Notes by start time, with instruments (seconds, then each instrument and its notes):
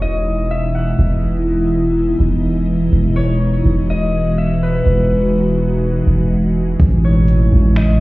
Already playing: 808-style bass E1, ambient pad B2 E3 G#3 D#4 E4, harp C#5
0.02 harp D#5
0.51 harp E5
0.75 harp F#5
0.99 808-style bass E1
2.20 808-style bass E1
2.93 808-style bass E1, ambient pad F#4
3.16 harp C#5
3.65 808-style bass E1
3.90 harp D#5
4.38 harp E5
4.63 harp B4
4.86 808-style bass E1
6.07 808-style bass E1
6.80 808-style bass A1, ambient pad C#3 A3 E4, kick, closed hi-hat
7.04 harp C#5
7.28 closed hi-hat
7.52 808-style bass A1
7.76 harp D#5, finger snap, closed hi-hat